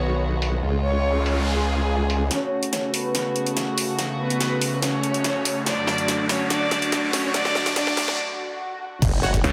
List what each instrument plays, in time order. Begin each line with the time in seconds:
Already playing: wobble bass B1, string section D#3 B3 F#4, violin section C#5
0.42 open hi-hat
0.63 wobble bass C#2, string section C#3 G#3 F4, noise sweep
0.84 violin section C#5
1.26 open hi-hat
1.47 violin section G#4
2.10 open hi-hat
2.31 string section C#3 A3 F#4, violin section C#4 C#5, snare, closed hi-hat, riser
2.63 closed hi-hat
2.73 snare, closed hi-hat
2.94 violin section B3 B4, open hi-hat
3.15 snare, closed hi-hat
3.36 closed hi-hat
3.47 closed hi-hat
3.57 snare, closed hi-hat
3.78 open hi-hat
3.99 snare, closed hi-hat
4.20 violin section B3 B4
4.30 closed hi-hat
4.41 snare, closed hi-hat
4.61 open hi-hat
4.82 violin section C#4 C#5, snare, closed hi-hat
5.03 closed hi-hat
5.14 closed hi-hat
5.24 snare, closed hi-hat
5.45 open hi-hat
5.66 string section F#2 D3 F#4, violin section D4 D5, snare, closed hi-hat
5.87 snare
5.98 closed hi-hat
6.08 snare, closed hi-hat
6.29 violin section C#4 C#5, snare, open hi-hat
6.50 violin section D4 D5, snare, closed hi-hat
6.71 snare, closed hi-hat
6.82 closed hi-hat
6.92 snare, closed hi-hat
7.13 violin section C#4 C#5, snare, open hi-hat
7.34 violin section D4 D5, snare, closed hi-hat
7.45 snare
7.55 snare
7.66 snare, closed hi-hat
7.76 violin section D4 D5, snare, closed hi-hat
7.87 snare
7.97 snare, open hi-hat
8.08 snare
8.18 swell
9.02 wobble bass F#1, kick, closed hi-hat, crash, impact
9.23 supersaw synth F#4 C#5 F#5
9.34 kick, closed hi-hat
9.44 detuned saw bass C#2, closed hi-hat